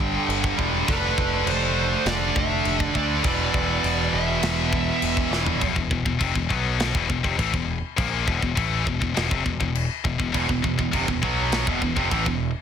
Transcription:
Already playing: G1 G2 D3 G3 G5
0.00 kick
0.28 G1, crash
0.44 kick
0.57 E1 G2 D3 G3, kick
0.87 F1 D3 A3 B4, kick, crash
0.91 D4
1.18 F1, kick
1.46 F1 C5, crash
2.06 F1 D5, snare, crash
2.36 F1 E5, kick
2.65 F1, crash
2.80 D5, kick
2.94 D2 D3 A3 D4 D5, kick
3.22 E1 E2 B2 D5, kick, crash
3.26 E3
3.54 E1, kick
3.84 E1, crash
4.13 E1 E5
4.42 E1, snare, crash
4.73 kick
5.02 E1, crash
5.17 kick
5.31 E1 E2 B2 E3, snare
5.46 floor tom
5.61 E1 E2 B2, kick, china
5.75 E1 E2 B2, kick
5.91 E1 E2 B2, kick
6.05 E1 E2 B2, kick
6.19 F1 F2 C3, kick, china
6.35 E1 E2 B2, kick
6.49 B1 B2 F#3 B3, kick
6.80 snare, china
6.93 E1 E2 B2, kick
7.09 E1 E2 B2, kick
7.23 F1 F2 C3, kick
7.38 A1 A2 E3, kick, china
7.53 E1 E2 B2, kick
7.97 A#1 A#2 F3 A#3, kick, china
8.26 E1 E2 B2, kick
8.42 E1 E2 B2, kick
8.55 A1 A2 E3 A3, kick, china
8.86 E1 E2 B2, kick
9.00 E1 E2 B2, kick
9.14 E1 E2 B2, snare, china
9.29 F1 F2 C3, kick
9.44 E1 E2 B2, kick
9.60 E1 E2 B2, kick
9.75 china
10.04 E1 E2 B2, kick
10.18 E1 E2 B2, kick
10.32 E1 E2 B2, kick, china
10.48 E1 E2 B2, kick
10.62 E1 E2 B2, kick
10.78 E1 E2 B2, kick
10.92 F1 F2 C3, kick, china
11.07 E1 E2 B2, kick
11.22 B1 B2 F#3 B3, kick
11.52 snare, china
11.66 E1 E2 B2, kick
11.82 E1 E2 B2, kick
11.96 F1 F2 C3, kick
12.10 A1 A2 E3, kick, china
12.25 E1 E2 B2, kick

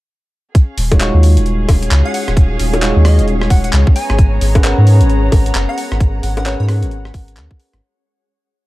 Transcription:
0.55 C#4 G#4 F5, kick, closed hi-hat
0.78 D#1, open hi-hat
0.92 G#3 D#4 F4 F#4 C#5, kick, closed hi-hat, high bongo
1.00 G#3 D#4 F4 F#4 C#5, clap, closed hi-hat
1.14 D#2
1.23 F5, open hi-hat
1.37 D#1, closed hi-hat
1.46 closed hi-hat
1.69 D#1, kick, open hi-hat, high bongo
1.83 closed hi-hat
1.91 C#2, clap, closed hi-hat
2.05 F#5
2.14 F#5, open hi-hat
2.28 D#1, cross-stick, closed hi-hat
2.37 kick, closed hi-hat
2.59 D#1, open hi-hat
2.73 G#3 D#4 F4 F#4 C#5, closed hi-hat, high bongo
2.82 G#3 D#4 F4 F#4 C#5, clap, closed hi-hat
2.96 D#2
3.05 D#5, cross-stick, open hi-hat
3.19 D#1, closed hi-hat
3.28 closed hi-hat
3.42 cross-stick
3.50 D#1 F#5, kick, open hi-hat
3.64 F#5, closed hi-hat
3.73 C#2, clap, closed hi-hat
3.87 kick
3.96 B3 G#5 A#5, open hi-hat
4.10 G#1, cross-stick, closed hi-hat
4.19 kick, closed hi-hat
4.35 F#5
4.41 G#1, open hi-hat
4.55 C#4 G#4 A#4 B4 F#5, kick, closed hi-hat, high bongo
4.64 C#4 G#4 A#4 B4 F#5, clap, closed hi-hat
4.78 G#2
4.87 open hi-hat
5.01 G#1, closed hi-hat
5.10 closed hi-hat
5.32 G#1, kick, open hi-hat, high bongo
5.46 closed hi-hat
5.55 F#1, clap, closed hi-hat
5.69 F#5
5.78 F#5, open hi-hat
5.92 G#1, cross-stick, closed hi-hat
6.00 kick, closed hi-hat
6.23 G#1 F#5, open hi-hat
6.37 C#4 G#4 A#4 B4 F#5, closed hi-hat, high bongo
6.46 C#4 G#4 A#4 B4 C#5 F#5, clap, closed hi-hat
6.60 G#2 C#5
6.69 cross-stick, open hi-hat
6.83 G#1, closed hi-hat
6.91 closed hi-hat
7.05 cross-stick
7.14 G#1, kick, open hi-hat
7.28 closed hi-hat
7.37 D#2, clap, closed hi-hat
7.51 kick
7.60 open hi-hat
7.73 G#1, cross-stick, closed hi-hat

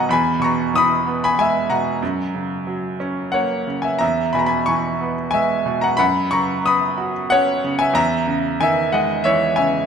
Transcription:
Already playing: D#2 B2 D#3 F#3 B3 D#5 F#5 G#5
0.09 E2 G#5 B5
0.39 B2 C#6
0.44 A#5
0.73 E3 D#6
0.78 B5
1.07 B3
1.24 G#5 B5
1.38 G#3 E5 G#5
1.70 B2 F#5 A#5
2.02 F#2
2.35 C#3
2.67 F#3
3.00 C#4
3.32 A#3 C#5 F#5
3.67 C#3
3.82 E5 G#5
3.99 E2 E5 A#5
4.33 B2 G#5 B5
4.39 A#5
4.46 G#5 B5
4.66 E3 G#5 C#6
5.01 B3
5.31 G#3 E5 G#5
5.66 B2
5.81 F#5 A#5
5.97 F#2 F#5 B5
6.31 C#3 A#5 C#6
6.63 B3 B5 D#6
6.98 F#4
7.30 C#4 C#5 F#5
7.64 C#3
7.79 E5 G#5
7.93 E2 E5 A#5
8.27 C#3
8.60 D#3 E5 G#5
8.92 G#3 D#5 F#5
9.24 E3 C#5 E5
9.56 C#3 E5 G#5

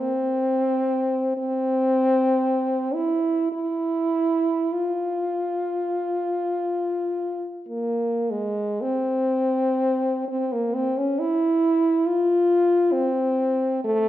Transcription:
0.00 C4
1.37 C4
2.94 E4
3.52 E4
4.73 F4
7.68 A#3
8.31 G#3
8.81 C4
10.28 C4
10.52 A#3
10.74 C4
10.97 C#4
11.19 E4
12.06 F4
12.92 C4
13.84 A3

